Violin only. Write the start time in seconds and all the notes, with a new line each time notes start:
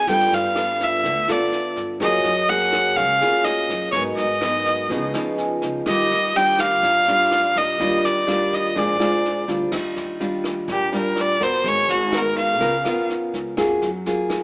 0.10 G5
0.34 F5
0.84 E5
1.31 D5
2.02 D#5
2.50 F#5
2.96 F5
3.45 D#5
3.92 C#5
4.17 D#5
5.88 D#5
6.36 G5
6.60 F5
7.57 D#5
8.05 D5
8.54 D#5
8.78 D5
10.72 G4
10.96 A#4
11.21 D5
11.43 C5
11.68 C#5
11.90 F#4
12.17 A#4
12.38 F5